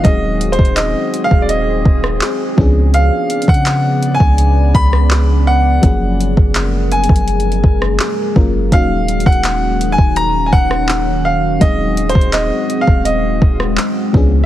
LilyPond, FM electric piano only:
\new Staff \with { instrumentName = "FM electric piano" } { \time 4/4 \key aes \mixolydian \tempo 4 = 83 <ges aes c' ees' aes'>2.~ <ges aes c' ees' aes'>8 <f ces' des' d' aes'>8~ | <f ces' des' d' aes'>2.~ <f ces' des' d' aes'>8 r8 | <f ges bes des' aes'>2.~ <f ges bes des' aes'>8 <ges bes des' f' bes'>8 | <ges bes des' ees' ges'>1 |
<ges aes c' ees' aes'>2.~ <ges aes c' ees' aes'>8 <f ces' des' d' aes'>8 | }